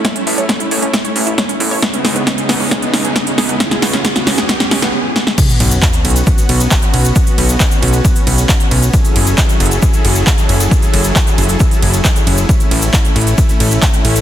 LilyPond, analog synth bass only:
\new Staff \with { instrumentName = "Analog synth bass" } { \clef bass \time 4/4 \key b \mixolydian \tempo 4 = 135 r8 a,,8 r8 a,,8 r8 a,,8 r8 a,,8 | r8 cis,8 r8 cis,8 r8 cis,8 r8 cis,8 | r8 cis,8 r8 cis,8 r8 cis,8 r4 | r8 b,,8 r8 b,,8 r8 b,,8 r8 b,,8 |
r8 b,,8 r8 b,,8 r8 b,,8 r8 b,,8 | r8 fis,,8 r8 fis,,8 r8 fis,,8 r8 fis,,8 | r8 fis,,8 r8 fis,,8 r8 fis,,8 r8 fis,,8 | r8 a,,8 r8 a,,8 r8 a,,8 r8 a,,8 | }